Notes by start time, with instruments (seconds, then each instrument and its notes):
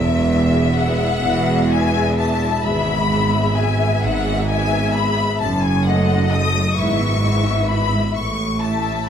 Already playing: double bass section E1, cello section E2, violin section E5
0.30 viola section B3 G#4, violin section E5
0.76 violin section F#5
1.22 double bass section E1, cello section E2
1.69 viola section B3 G#4, violin section E5 G#5
2.18 violin section A5
2.63 double bass section G#1, cello section G#2, viola section B3 G#4, violin section E5 B5
3.10 viola section B3 G#4, violin section E5
3.57 violin section G#5
4.02 double bass section G#1, cello section G#2, violin section F#5
4.47 viola section B3 G#4, violin section E5 G#5
4.93 violin section B5
5.40 double bass section F#1, cello section F#2, violin section A5
5.62 violin section G#5
5.86 viola section A3 A4, violin section D#5 F#5
6.31 violin section D#6
6.75 double bass section G#1, cello section G#2, viola section B3 E4, violin section E5 C#6
7.20 viola section B3 E4, violin section E5
7.68 violin section B5
8.15 double bass section A1, cello section A2, violin section C#6
8.60 viola section A3 E4, violin section E5 A5